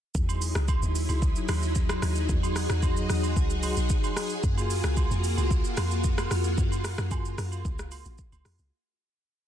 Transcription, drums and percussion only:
0.15 kick, shaker
0.29 high agogo, shaker
0.42 open hi-hat, shaker
0.55 cross-stick, shaker
0.68 kick, high agogo, shaker
0.82 shaker
0.95 open hi-hat, shaker
1.09 high agogo, shaker
1.22 kick, shaker
1.36 shaker
1.48 cross-stick, open hi-hat, high agogo, shaker
1.63 shaker
1.75 kick, shaker
1.89 cross-stick, high agogo, shaker
2.02 cross-stick, open hi-hat, shaker
2.16 shaker
2.29 kick, shaker
2.43 high agogo, shaker
2.56 cross-stick, open hi-hat, shaker
2.70 cross-stick, shaker
2.82 kick, high agogo, shaker
2.97 shaker
3.09 cross-stick, open hi-hat, shaker
3.23 high agogo, shaker
3.36 kick, shaker
3.50 shaker
3.63 open hi-hat, high agogo, shaker
3.77 shaker
3.89 kick, shaker
4.04 high agogo, shaker
4.17 cross-stick, open hi-hat, shaker
4.30 shaker
4.43 kick, shaker
4.58 high agogo, shaker
4.70 open hi-hat, shaker
4.84 cross-stick, shaker
4.97 kick, high agogo, shaker
5.11 shaker
5.24 open hi-hat, shaker
5.38 high agogo, shaker
5.51 kick, shaker
5.64 shaker
5.77 cross-stick, open hi-hat, high agogo, shaker
5.91 shaker
6.04 kick, shaker
6.18 cross-stick, high agogo, shaker
6.31 cross-stick, open hi-hat, shaker
6.44 shaker
6.58 kick, shaker
6.72 high agogo, shaker
6.84 cross-stick, open hi-hat, shaker
6.98 cross-stick, shaker
7.11 kick, high agogo, low woodblock, shaker
7.25 shaker
7.38 cross-stick, open hi-hat, shaker
7.52 high agogo, shaker
7.65 kick, shaker
7.79 cross-stick, shaker
7.91 open hi-hat, high agogo, shaker
8.05 shaker
8.18 kick, shaker
8.32 high agogo, shaker
8.45 cross-stick, open hi-hat, shaker
8.58 shaker

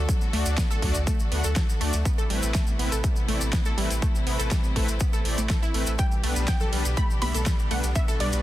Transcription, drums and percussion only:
0.09 kick, closed hi-hat, maracas
0.21 maracas
0.33 open hi-hat
0.46 closed hi-hat, maracas
0.58 kick, snare, closed hi-hat, maracas
0.71 maracas
0.82 kick, open hi-hat
0.95 closed hi-hat, maracas
1.07 kick, closed hi-hat, maracas
1.20 maracas
1.32 open hi-hat
1.44 closed hi-hat, maracas
1.56 kick, snare, closed hi-hat, maracas
1.69 maracas
1.81 open hi-hat
1.93 closed hi-hat, maracas
2.05 kick, closed hi-hat, maracas
2.19 maracas
2.30 open hi-hat
2.43 closed hi-hat, maracas
2.54 kick, snare, closed hi-hat, maracas
2.67 maracas
2.79 open hi-hat
2.92 closed hi-hat, maracas
3.04 kick, closed hi-hat, maracas
3.16 maracas
3.29 open hi-hat
3.41 closed hi-hat, maracas
3.53 kick, snare, closed hi-hat, maracas
3.65 maracas
3.78 open hi-hat
3.90 closed hi-hat, maracas
4.02 kick, closed hi-hat, maracas
4.15 maracas
4.27 open hi-hat
4.40 closed hi-hat, maracas
4.51 kick, snare, closed hi-hat, maracas
4.64 maracas
4.76 kick, open hi-hat
4.88 closed hi-hat, maracas
5.00 kick, closed hi-hat, maracas
5.13 maracas
5.25 open hi-hat
5.38 closed hi-hat, maracas
5.50 kick, snare, closed hi-hat, maracas
5.63 maracas
5.74 open hi-hat
5.87 closed hi-hat, maracas
5.99 kick, closed hi-hat, maracas
6.12 maracas
6.24 open hi-hat, ride
6.36 closed hi-hat, maracas
6.48 kick, snare, closed hi-hat, maracas
6.60 low conga, maracas
6.73 open hi-hat, ride
6.85 closed hi-hat, maracas
6.97 kick, closed hi-hat, maracas
7.10 maracas
7.22 open hi-hat, ride, high conga
7.34 closed hi-hat, high conga, maracas
7.46 kick, snare, closed hi-hat, maracas
7.59 maracas
7.71 open hi-hat, ride
7.84 closed hi-hat, maracas
7.95 kick, closed hi-hat, maracas
8.08 maracas
8.20 open hi-hat, ride
8.33 closed hi-hat, maracas

